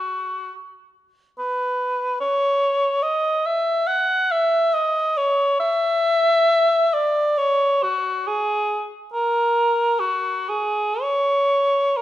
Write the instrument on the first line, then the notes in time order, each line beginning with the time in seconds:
cor anglais
Already playing: F#4
1.39 B4
2.20 C#5
3.03 D#5
3.46 E5
3.87 F#5
4.31 E5
4.74 D#5
5.17 C#5
5.60 E5
6.93 D5
7.38 C#5
7.83 F#4
8.27 G#4
9.13 A#4
10.00 F#4
10.49 G#4
11.01 C#5
11.97 A#4